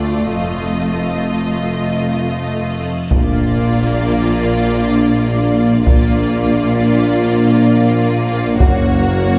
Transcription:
Already playing: D2 A3 F4 D5
0.31 F1 F2 F4 D#5, reverse cymbal
3.11 A#1 A#2 A#3 D4 F4 D5, taiko, impact
5.86 A#1 A#2 A#3 D4 F4 D5, taiko
8.60 F#1 F#2 A#3 C#4 F#4 C#5, taiko

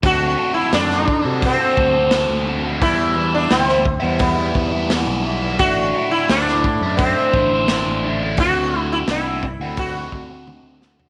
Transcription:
0.03 D2 D3 A3 C4 F#4 A4, kick, open hi-hat
0.37 A3 C4 F#4 A4
0.54 E4
0.71 F#2 D3 A3 C4 D4 F#4 A4, snare, open hi-hat
0.89 C4 F#4 A4, snare
1.07 muted overdriven electric guitar stroke, kick
1.23 C3 C4 F#4 A4
1.42 C4, kick, open hi-hat
1.59 C4 F#4 A4
1.76 D2 A3 C4 F#4 A4, kick
1.94 C4 F#4 A4
2.11 D3 A3 B3 C4 F#4 A4, snare, open hi-hat
2.29 D2
2.46 A3 C4 F#4 A4
2.64 C4 F#4 A4
2.80 E2 E3 G3 B3 E4, kick, open hi-hat
3.15 E3 G3 B3 E4
3.35 D4
3.50 D2 E3 G3 B3 C4 E4, snare, open hi-hat
3.67 G3 B3 E4, snare
3.84 muted overdriven electric guitar stroke, kick
4.00 E2 G3 B3 E4
4.19 B3, kick, open hi-hat
4.35 G3 B3 E4
4.53 E2 E3 G3 B3 E4, kick
4.71 G3 B3 E4
4.89 E3 G3 B3 E4, snare, open hi-hat
5.07 B1
5.25 E3 G3 B3 E4
5.42 G3 B3 E4
5.59 A1 A2 D3 A3 D4 E4 F#4, kick, open hi-hat
5.95 D3 A3 D4 E4
6.11 E4
6.29 D2 A2 D3 A3 D4 E4, snare, open hi-hat
6.47 A3 D4 E4, snare
6.64 muted overdriven electric guitar stroke, kick
6.81 F#2 D4 E4
6.85 A3
6.97 C4, kick, open hi-hat
7.18 A3 D4 E4
7.33 A1 D3 A3 D4, kick
7.38 E4
7.52 A3 D4 E4
7.68 A2 D3 A3 D4 E4, snare, open hi-hat
7.86 A1
8.05 D3 A3 D4 E4
8.22 A3 D4 E4
8.37 D2 D3 A3 F#4, kick, open hi-hat
8.42 C4 F#4
8.76 D3 A3 C4 F#4
8.92 E4
9.08 C2 D3 A3 C4 E4 F#4, snare, open hi-hat
9.27 A3 C4 F#4
9.43 muted overdriven electric guitar stroke, kick
9.60 D2 C4 F#4
9.64 A3
9.77 F#4, kick, open hi-hat
9.95 A3 C4 F#4
10.12 D2 D3 A3 C4 F#4, kick
10.30 A3 C4 F#4
10.47 D3 A3 C4 F#4, high tom
10.63 D2
10.81 D3 A3 C4 F#4, snare
10.98 A3 C4 F#4, floor tom

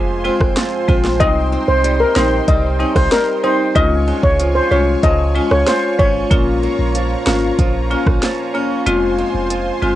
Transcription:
Already playing: F1 F2 C3 F3 G#3 F4 C5 G#5 C6
0.24 G#3 C4 F4
0.40 F1, kick, cross-stick
0.56 F3, snare, closed hi-hat
0.88 A#1 G#3 C4 F4, kick
1.05 snare
1.20 C2 C3 G3 C4 D#4 D#5 G5, kick, closed hi-hat
1.52 C4
1.68 C2 C5
1.84 G3, closed hi-hat
2.00 A#4
2.16 A#1 G3 C4 D#4 C5, snare
2.48 C2 G3 D#5, kick, closed hi-hat
2.79 G3 C4 C#4 D#4
2.96 C2 D#4 C5, kick, cross-stick
3.12 G3 A#4, snare, closed hi-hat
3.43 G3 C4 D#4 C5
3.75 C#2 G#3 C#4 F4 C#5 D#5 G#5 C#6, kick, closed hi-hat
4.08 G#3
4.23 C#2 C#5, kick
4.40 F3, closed hi-hat
4.55 C5
4.71 C2 G#3 C#4 F4 C#5
5.03 C#2 F3 D#5, kick, closed hi-hat
5.35 G#3 C#4 F4
5.51 C#2 C#5, cross-stick
5.67 F3 C5, snare, closed hi-hat
5.99 G#1 G#3 C#4 F4 C#5, kick
6.31 A#1 A#2 A#3 C#4 F4 A#5, kick, closed hi-hat
6.63 A#3
6.79 A#1
6.95 F3, closed hi-hat
7.26 G#1 A#3 C#4 F4, snare
7.59 A#1 F3, kick, closed hi-hat
7.90 A#3 C#4 F4
8.06 A#1, kick, cross-stick
8.23 F3, snare, closed hi-hat
8.54 A#3 C#4 F4
8.86 F1 F2 G#3 C4 F4 C5 G#5 C6, closed hi-hat
9.18 G#3
9.34 F1
9.50 F3, closed hi-hat
9.82 G1 G#3 C4 F4

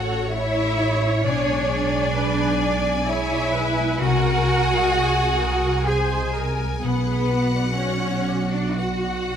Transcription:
Already playing: A1 A2 A3 F#4 A4 C#5 F#5 C#6
0.08 F#5
0.30 E4 A4 C#5 E5
0.54 C#5
0.77 F#4
1.00 A3
1.23 B1 B2 D4 D5 G#5
1.46 G#3
1.69 G#4
1.93 D5
2.15 G#4 B4
2.38 G#5
2.61 D5 D6
2.85 G#5
3.08 E4 G#4 C#5 E5
3.32 D5
3.54 G#4 B4
3.78 G#3
4.00 C2 C3 F#4 A#4 F#5 G#5
4.24 G#3
4.47 G#4
4.71 D#5
4.92 G#4
5.17 G#5
5.39 A#4 D#6
5.65 G#5
5.86 G#4 C5 G#5
6.11 D#5
6.33 G#4 A#4
6.59 G#3
6.81 B1 B2 B3 G#4 B4 F#5
7.06 B3
7.30 F#4
7.55 D5
7.77 C#4 B4 C#5
8.03 F#5
8.28 D6
8.51 D4 D5 F#5
8.76 F#4 B4 F#5
9.03 D5
9.28 F#4

